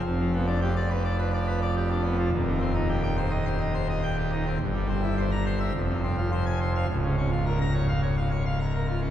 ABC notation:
X:1
M:4/4
L:1/16
Q:1/4=105
K:Cm
V:1 name="Pipe organ"
F,, F, =B, D G d =B d B d B d G D B, F, | E,, E, C E G g c e c e c e g G E C | [K:Bbdor] G,, G, C =E c b c =e F,, C, C F c a c f | D,, D, D F B b d f d f d f b B F D |]
V:2 name="Pipe organ" clef=bass
F,,,16 | E,,,16 | [K:Bbdor] G,,,8 F,,,8 | D,,,16 |]